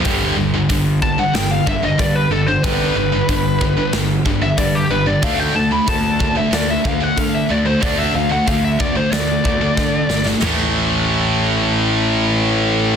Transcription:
<<
  \new Staff \with { instrumentName = "Lead electric guitar" } { \time 4/4 \key g \mixolydian \tempo 4 = 92 r4. a''16 fis''16 g''16 f''16 e''16 dis''16 d''16 b'16 a'16 c''16 | b'2 r8. e''16 d''16 g'16 b'16 d''16 | f''16 g''16 a''16 b''16 a''8. e''16 d''16 e''16 f''16 fis''16 f''16 e''16 d''16 c''16 | d''16 e''16 f''16 fis''16 f''16 e''16 d''16 c''16 d''4.~ d''16 r16 |
r1 | }
  \new Staff \with { instrumentName = "Distorted electric guitar" } { \clef bass \time 4/4 \key g \mixolydian <g, d g>8 <g, d>16 <g, d>16 <g, d>8 <g, d>16 <g, d>16 <g, d>8 <g, d>16 <g, d>16 <g, d>8 <g, d>16 <g, d>16 | <g, d g>8 <g, d>16 <g, d>16 <g, d>8 <g, d>16 <g, d>16 <g, d>8 <g, d>16 <g, d>16 <g, d>8 <g, d>16 <g, d>16 | <d a d'>8 <d a>16 <d a>16 <d a>8 <d a>16 <d a>16 <d a>8 <d a>16 <d a>16 <d a>8 <d a>16 <d a>16 | <d a d'>8 <d a>16 <d a>16 <d a>8 <d a>16 <d a>16 <d a>8 <d a>16 <d a>16 <d a>8 <d a>16 <d a>16 |
<a, e a>1 | }
  \new Staff \with { instrumentName = "Distorted electric guitar" } { \clef bass \time 4/4 \key g \mixolydian <g, d g>8 <g, d>16 <g, d>16 <g, d>8 <g, d>16 <g, d>16 <g, d>8 <g, d>16 <g, d>16 <g, d>8 <g, d>16 <g, d>16 | <g, d g>8 <g, d>16 <g, d>16 <g, d>8 <g, d>16 <g, d>16 <g, d>8 <g, d>16 <g, d>16 <g, d>8 <g, d>16 <g, d>16 | <d a d'>8 <d a>16 <d a>16 <d a>8 <d a>16 <d a>16 <d a>8 <d a>16 <d a>16 <d a>8 <d a>16 <d a>16 | <d a d'>8 <d a>16 <d a>16 <d a>8 <d a>16 <d a>16 <d a>8 <d a>16 <d a>16 <d a>8 <d a>16 <d a>16 |
<a, e a>1 | }
  \new Staff \with { instrumentName = "Picked electric bass" } { \clef bass \time 4/4 \key g \mixolydian g,,8 g,,8 g,,4 g,,8 g,,8 g,8 g,,8 | g,,8 g,,8 g,,4 g,,8 g,,8 g,8 g,,8 | d,8 d,8 d,4 d,8 d,8 d8 d,8 | d,8 d,8 d,4 d,8 d,8 d8 g,,8 |
a,,1 | }
  \new DrumStaff \with { instrumentName = "Drums" } \drummode { \time 4/4 <hho bd>4 <hho bd>8 bd8 <hho sn>8 bd8 <hho bd>4 | <hho bd>4 <hho bd>8 bd8 <hho sn>8 bd8 <hho bd>4 | <hho bd>4 <hho bd>8 bd8 <hho sn>8 bd8 <hho bd>4 | <hho bd>4 <hho bd>8 bd8 <hho sn>8 bd8 <bd sn>8 sn16 sn16 |
<cymc sn tomfh>4 r4 r4 r4 | }
>>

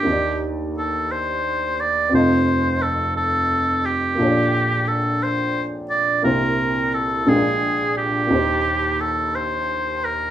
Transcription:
<<
  \new Staff \with { instrumentName = "Oboe" } { \time 6/8 \key bes \major \tempo 4. = 58 g'8 r8 a'8 c''4 d''8 | c''4 a'8 a'4 g'8~ | g'4 a'8 c''8 r8 d''8 | bes'4 a'8 aes'4 g'8~ |
g'4 a'8 c''4 bes'8 | }
  \new Staff \with { instrumentName = "Upright piano" } { \time 6/8 \key bes \major <ees, ees bes ees' g' d''>2. | <f,, f, c' f' a' ees''>2. | <bes,, bes, bes f' a' des'' d''>2. | <c, c bes e' g' c''>4. <bes,, bes, aes d' f' aes' bes'>4. |
<ees, ees bes ees' g' c''>2. | }
>>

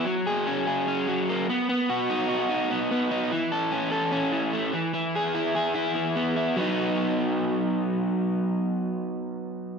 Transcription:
\new Staff \with { instrumentName = "Overdriven electric guitar" } { \time 4/4 \key b \major \tempo 4 = 147 fis8 gis'8 cis'8 gis'8 cis'8 fis8 ais8 b8 | b8 fis'8 dis'8 fis'8 dis'8 b8 b8 dis'8 | e8 a'8 cis'8 a'8 cis'8 e8 a8 e8 | e8 gis'8 e'8 gis'8 e'8 e8 b8 e'8 |
<fis b dis'>1~ | <fis b dis'>1 | }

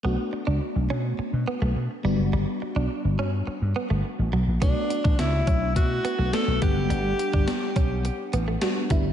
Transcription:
<<
  \new Staff \with { instrumentName = "Alto saxophone" } { \time 4/4 \key b \minor \tempo 4 = 105 r1 | r1 | d'4 e'4 fis'4 a'8 g'8~ | g'2~ g'8 r4. | }
  \new Staff \with { instrumentName = "FM electric piano" } { \time 4/4 \key b \minor <a b d' fis'>2.~ <a b d' fis'>8 <g b d' fis'>8~ | <g b d' fis'>2.~ <g b d' fis'>8 r8 | <a b d' fis'>4. r4. <a b d' fis'>8 <g b d' fis''>8~ | <g b d' fis''>4 r2 <g b d' fis'>8 <g b d' e'>8 | }
  \new Staff \with { instrumentName = "Clean electric guitar" } { \time 4/4 \key b \minor b16 r8 d'16 r8 cis'16 r8. b16 a16 r8 g16 r16 | g16 r8 d'16 r8 cis'16 r8. b16 a16 r8 fis16 r16 | b16 r8 d'16 r8 cis'16 r8. b16 a16 r8 g16 r16 | g16 r8 d'16 r8 cis'16 r8. b16 a16 r8 g16 r16 | }
  \new Staff \with { instrumentName = "Slap bass" } { \clef bass \time 4/4 \key b \minor b,,16 r8 cis,16 r16 b,,16 b,8 r16 b,16 r16 b,,16 b,16 r16 g,,16 fis,,16 | g,,16 r8 b,,16 r16 g,,16 g,8 r16 g,16 r16 g,,16 r16 a,,16 b,,16 bes,,16 | b,,16 r8 a,,16 cis,8 b,,8 b,8 r16 b,,16 r16 b,,16 g,,16 fis,,16 | g,,8 r16 g,,16 r8 b,,8. r16 a,,8 r8 g,,8 | }
  \new DrumStaff \with { instrumentName = "Drums" } \drummode { \time 4/4 r4 r4 r4 r4 | r4 r4 r4 r4 | <hh bd>8 hh16 bd16 <hh sn>8 <hh bd>8 <hh bd>8 hh8 <hh sn>8 <hh bd>8 | hh8 hh16 bd16 <hh sn>8 <hh bd>8 hh8 hh8 <hh sn>8 <hh bd>8 | }
>>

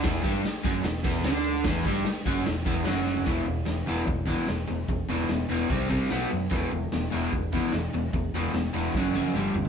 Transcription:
<<
  \new Staff \with { instrumentName = "Overdriven electric guitar" } { \clef bass \time 4/4 \key e \minor \tempo 4 = 148 <e, e>8 <g, g>8 r8 <fis, fis>8 e,8 <e, e>8 <d d'>4 | <e, e>8 <g, g>8 r8 <fis, fis>8 e,8 <e, e>8 <fis, fis>4 | <e, b, e>8 <e, b,>8 <e, b,>8 <e, b, e>8 <e, b,>8 <e, b, e>8 <e, b,>8 <e, b,>8 | <e, b,>8 <e, b, e>8 <e, b,>8 <e, b, e>8 <c g c'>8 <c g c'>8 <b, fis b>8 <b, fis>8 |
<e, b, e>8 <e, b,>8 <e, b,>8 <e, b, e>8 <e, b,>8 <e, b, e>8 <e, b,>8 <e, b,>8 | <e, b,>8 <e, b, e>8 <e, b,>8 <e, b, e>8 <fis, cis fis>8 <fis, cis fis>8 <g, d g>8 <g, d>8 | }
  \new Staff \with { instrumentName = "Picked electric bass" } { \clef bass \time 4/4 \key e \minor e,,8 g,,8 r8 fis,,8 e,,8 e,,8 d,4 | e,,8 g,,8 r8 fis,,8 e,,8 e,,8 fis,,4 | e,,8 e,,8 e,,8 e,,8 e,,4 e,,8 e,,8 | e,,8 e,,8 e,,8 e,,8 c,4 b,,8 fis,8 |
e,,8 e,,8 e,,8 e,,8 e,,4 e,,8 e,,8 | e,,8 e,,8 e,,8 e,,8 fis,,4 g,,8 g,,8 | }
  \new DrumStaff \with { instrumentName = "Drums" } \drummode { \time 4/4 <bd cymr sn>8 <bd cymr>8 <cymr sn>8 <bd cymr>8 <cymr sn>8 <bd cymr>8 <cymr sn>8 cymr8 | <bd cymr sn>8 <bd cymr>8 <cymr sn>8 <bd cymr>8 <cymr sn>8 <bd cymr>8 <cymr sn>8 sn16 tomfh16 | <hho bd>4 <hho sn>4 <hho bd>8 bd8 <hho sn>4 | <hho bd>4 <hho sn>4 <hho bd>8 bd8 <hho sn>4 |
<hho bd>4 <hho sn>4 <hho bd>8 bd8 <hho sn>4 | <hho bd>4 <hho sn>4 <bd sn>8 tommh16 tommh16 toml8 tomfh16 tomfh16 | }
>>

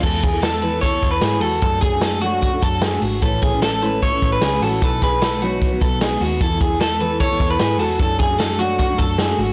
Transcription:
<<
  \new Staff \with { instrumentName = "Clean electric guitar" } { \time 4/4 \key e \mixolydian \tempo 4 = 151 r4 a'4 cis''8. b'8. a'8~ | a'8 gis'4 fis'8 fis'8 a'4 r8 | r4 a'4 cis''8. b'8. a'8 | b'8 b'2. r8 |
r4 a'4 cis''8. b'8. a'8~ | a'8 gis'4 fis'8 fis'8 a'4 r8 | }
  \new Staff \with { instrumentName = "Clean electric guitar" } { \time 4/4 \key e \mixolydian a'8 gis'8 a'8 b'8 a'4 gis'8 fis'8 | a'8 gis'8 a'8 fis'4 a'8 gis'8 fis'8 | a'8 gis'8 a'8 b'8 a'4 gis'8 fis'8 | a'8 gis'8 a'8 fis'4 a'8 gis'8 fis'8 |
a'8 gis'8 a'8 b'8 a'4 gis'8 fis'8 | a'8 gis'8 a'8 fis'4 a'8 gis'8 fis'8 | }
  \new Staff \with { instrumentName = "Steel-string acoustic guitar" } { \time 4/4 \key e \mixolydian <e b e' a'>8. <b e' a'>8. <e b e' a'>8. <e b e' a'>4 <b e' a'>8. | <fis a d' fis'>8. <a d' fis'>8. <fis a d' fis'>8. <fis a d' fis'>4 <a d' fis'>8. | <a cis' e' b'>8. <cis' e' b'>8. <a cis' e' b'>8. <a cis' e' b'>4 <cis' e' b'>8. | <fis b dis' b'>8. <b dis' b'>8. <b, fis b dis' b'>8. <b, fis b dis' b'>4 <b dis' b'>8. |
<e b e' a'>8. <b e' a'>8. <e b e' a'>8. <e b e' a'>4 <b e' a'>8. | <fis a d' fis'>8. <a d' fis'>8. <fis a d' fis'>8. <fis a d' fis'>4 <a d' fis'>8. | }
  \new Staff \with { instrumentName = "Picked electric bass" } { \clef bass \time 4/4 \key e \mixolydian e,2~ e,8 e,8 gis,8 e,8 | fis,2~ fis,8 fis,4 gis,,8 | a,,2~ a,,8 a,,8 cis,8 a,,8 | b,,2~ b,,8 b,,4 dis,8 |
e,2~ e,8 e,8 gis,8 e,8 | fis,2~ fis,8 fis,4 gis,,8 | }
  \new DrumStaff \with { instrumentName = "Drums" } \drummode { \time 4/4 <cymc bd>8 <hh bd>8 <hh sn>8 hh8 <hh bd>8 <hh bd>8 <hh sn>8 hho8 | <hh bd>8 <hh bd>8 <hh sn>8 hh8 <hh bd>8 <hh bd>8 <hh sn>8 hho8 | <hh bd>8 <hh bd>8 <hh sn>8 hh8 <hh bd>8 <hh bd>8 <hh sn>8 hho8 | <hh bd>8 <hh bd>8 <hh sn>8 hh8 <hh bd>8 <hh bd>8 <hh sn>8 hho8 |
<hh bd>8 <hh bd>8 <hh sn>8 hh8 <hh bd>8 <hh bd>8 <hh sn>8 hho8 | <hh bd>8 <hh bd>8 <hh sn>8 hh8 <hh bd>8 <hh bd>8 <hh sn>8 hho8 | }
>>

